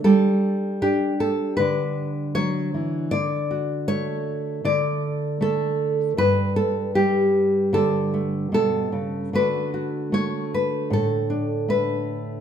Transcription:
0.00 0.81 D4 soft
0.04 2.35 G3 medium
0.04 1.19 A4 medium
0.82 3.91 D4 medium
0.82 1.97 G4 medium
1.20 1.56 A4 medium
1.57 3.08 D3 medium
1.57 2.34 B4 medium
2.35 2.74 F#3 medium
2.35 3.11 C#5 loud
2.74 3.12 E3 medium
3.11 4.63 D3 medium
3.11 3.88 D5 loud
3.51 5.41 F#4 soft
3.88 5.40 A3 medium
3.88 4.64 C#5 loud
4.64 6.13 D3 medium
4.64 6.18 D5 loud
5.41 6.20 A3 medium
5.41 6.18 A4 medium
6.17 9.29 G2 medium
6.17 6.56 B4 loud
6.56 6.95 A4 medium
6.95 9.29 G3 medium
6.95 7.73 G4 medium
7.73 8.51 D3 medium
7.73 8.53 A4 medium
8.14 9.34 A3 soft
8.52 8.92 B2 medium
8.52 9.34 A4 medium
8.92 9.33 C#3 medium
9.33 12.40 D3 medium
9.33 10.12 A3 soft
9.33 11.29 D4 soft
9.33 9.73 F#4 soft
9.33 10.13 B4 medium
9.74 12.40 F#4 soft
10.12 11.68 A3 medium
10.12 10.53 C#5 medium
10.54 10.92 B4 medium
10.90 12.40 A2 medium
10.90 11.69 A4 medium
11.30 12.40 D4 soft
11.69 12.40 A3 medium
11.69 12.40 B4 medium

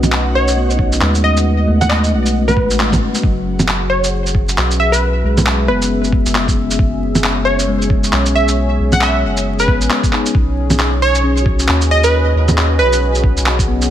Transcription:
0.00 1.00 B1 loud
0.00 3.24 F#3 medium
0.00 1.68 A3 medium
0.00 3.23 C#4 medium
0.00 3.26 C#4 medium
0.00 0.75 D#4 medium
0.00 10.35 F#4 medium
0.00 3.24 B4 medium
0.00 3.23 D#5 medium
0.00 3.25 F#5 medium
0.00 low bongo medium
0.00 shaker medium
0.12 clap loud
0.35 0.59 C#5 medium
0.48 shaker medium
0.57 1.00 B3 medium
0.70 shaker soft
0.75 1.15 D#4 medium
0.75 kick medium
0.89 1.27 F#4 medium
0.89 shaker medium
1.01 1.67 D#2 loud
1.01 1.45 G#3 medium
1.01 clap loud
1.15 shaker soft
1.24 1.34 D#5 medium
1.37 shaker medium
1.68 2.14 D#2 medium
1.68 2.11 A3 medium
1.81 1.88 F#5 medium
1.81 low bongo medium
1.81 shaker medium
1.89 2.25 D#5 medium
1.89 clap loud
2.04 shaker soft
2.13 2.56 B1 medium
2.26 shaker medium
2.48 2.79 B4 medium
2.48 low bongo soft
2.48 shaker soft
2.57 3.00 A1 medium
2.57 kick loud
2.71 shaker medium
2.80 clap loud
2.92 kick medium
2.92 low bongo medium
2.92 shaker soft
3.15 shaker medium
3.23 4.56 F#1 loud
3.23 3.66 F#3 medium
3.23 13.90 G#4 medium
3.23 kick loud
3.59 13.90 C#4 medium
3.59 low bongo medium
3.59 shaker medium
3.68 clap loud
3.90 4.14 C#5 medium
4.04 10.35 E5 medium
4.04 shaker medium
4.26 7.06 B4 medium
4.26 shaker soft
4.35 kick loud
4.49 shaker medium
4.57 5.23 B1 medium
4.57 clap loud
4.71 shaker soft
4.80 4.90 E5 medium
4.92 5.16 B4 medium
4.92 shaker medium
5.24 5.70 B1 medium
5.24 5.67 G#3 medium
5.38 low bongo medium
5.38 shaker medium
5.46 clap loud
5.68 6.26 F#1 medium
5.68 6.11 B3 medium
5.68 6.04 B4 medium
5.82 shaker medium
6.04 shaker soft
6.13 kick loud
6.26 6.78 F#1 medium
6.26 shaker medium
6.35 clap loud
6.48 kick loud
6.48 shaker soft
6.71 shaker medium
6.79 8.12 F#1 loud
6.79 kick loud
6.94 10.35 C#5 medium
7.15 low bongo medium
7.15 shaker medium
7.23 7.66 C#4 medium
7.23 clap loud
7.45 7.69 C#5 medium
7.59 shaker medium
7.68 8.11 G#3 medium
7.82 shaker soft
7.90 kick loud
8.04 shaker medium
8.13 8.78 B1 loud
8.13 clap loud
8.26 shaker soft
8.35 8.46 E5 medium
8.48 shaker medium
8.80 9.25 B1 medium
8.92 9.00 F#5 loud
8.92 low bongo medium
8.92 shaker medium
9.01 9.38 E5 medium
9.01 clap loud
9.24 9.67 F#1 medium
9.37 shaker medium
9.59 9.91 B4 medium
9.59 shaker soft
9.68 9.89 A1 medium
9.68 10.11 B3 medium
9.68 kick loud
9.81 shaker medium
9.90 clap loud
10.04 kick loud
10.04 shaker soft
10.13 10.54 D#4 medium
10.13 clap medium
10.26 shaker medium
10.35 11.67 B1 loud
10.35 kick loud
10.70 low bongo medium
10.70 shaker medium
10.79 clap loud
11.02 13.90 F#4 medium
11.02 11.25 C#5 medium
11.15 shaker medium
11.24 11.67 C#4 medium
11.24 13.90 B4 medium
11.37 shaker soft
11.42 11.82 F#4 medium
11.42 13.90 D#5 medium
11.42 kick loud
11.59 shaker medium
11.68 12.34 D#2 loud
11.68 clap loud
11.81 shaker soft
11.91 12.01 D#5 medium
12.04 12.27 B4 medium
12.04 shaker medium
12.35 12.81 D#2 medium
12.48 low bongo medium
12.48 shaker medium
12.57 clap loud
12.79 13.37 B1 medium
12.79 13.15 B4 medium
12.93 shaker medium
13.15 shaker soft
13.24 kick loud
13.37 13.89 B1 medium
13.37 shaker medium
13.46 clap loud
13.59 kick loud
13.59 shaker soft
13.68 13.90 B3 medium
13.82 shaker medium

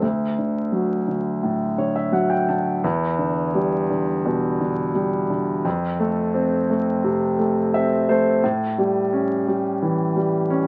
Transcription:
0.02 2.80 D2 medium
0.38 1.06 D3 soft
0.72 2.10 F#3 soft
1.08 1.77 D3 soft
1.43 2.81 A2 soft
1.78 2.48 D3 soft
1.78 1.95 C#5 soft
1.96 2.12 E5 soft
2.12 2.82 F#3 soft
2.12 2.30 F#5 medium
2.30 2.47 G5 medium
2.49 2.83 D3 soft
2.49 2.82 A5 medium
2.84 5.61 E2 medium
3.19 3.89 D3 soft
3.55 4.91 G3 medium
3.90 4.59 D3 soft
4.26 5.62 B2 soft
4.61 5.28 D3 soft
4.95 5.63 G3 soft
5.30 5.64 D3 soft
5.65 8.39 F2 medium
6.00 6.69 A3 medium
6.34 7.69 C4 medium
6.70 7.37 A3 soft
7.04 8.39 C3 medium
7.39 8.08 A3 soft
7.74 8.41 C4 medium
7.74 8.06 E5 medium
8.09 8.43 A3 soft
8.09 8.41 C5 medium
8.44 10.67 A2 medium
8.78 9.46 G3 medium
9.13 10.47 C#4 medium
9.48 10.15 G3 soft
9.82 10.67 E3 medium
10.16 10.67 G3 soft
10.50 10.67 C#4 medium

